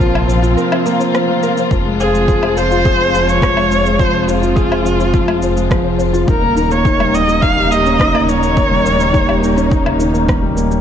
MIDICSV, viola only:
0, 0, Header, 1, 2, 480
1, 0, Start_track
1, 0, Key_signature, -4, "minor"
1, 0, Tempo, 571429
1, 1438, Time_signature, 4, 2, 24, 8
1, 9080, End_track
2, 0, Start_track
2, 0, Title_t, "Viola"
2, 0, Program_c, 0, 41
2, 0, Note_on_c, 0, 65, 108
2, 960, Note_off_c, 0, 65, 0
2, 1682, Note_on_c, 0, 68, 109
2, 2165, Note_on_c, 0, 72, 115
2, 2177, Note_off_c, 0, 68, 0
2, 2766, Note_on_c, 0, 73, 118
2, 2778, Note_off_c, 0, 72, 0
2, 3356, Note_on_c, 0, 72, 105
2, 3368, Note_off_c, 0, 73, 0
2, 3592, Note_on_c, 0, 65, 107
2, 3605, Note_off_c, 0, 72, 0
2, 5035, Note_off_c, 0, 65, 0
2, 5285, Note_on_c, 0, 70, 105
2, 5638, Note_on_c, 0, 73, 101
2, 5651, Note_off_c, 0, 70, 0
2, 6003, Note_on_c, 0, 75, 109
2, 6015, Note_off_c, 0, 73, 0
2, 6230, Note_on_c, 0, 77, 115
2, 6243, Note_off_c, 0, 75, 0
2, 6476, Note_on_c, 0, 75, 109
2, 6489, Note_off_c, 0, 77, 0
2, 6961, Note_on_c, 0, 73, 112
2, 6973, Note_off_c, 0, 75, 0
2, 8399, Note_off_c, 0, 73, 0
2, 9080, End_track
0, 0, End_of_file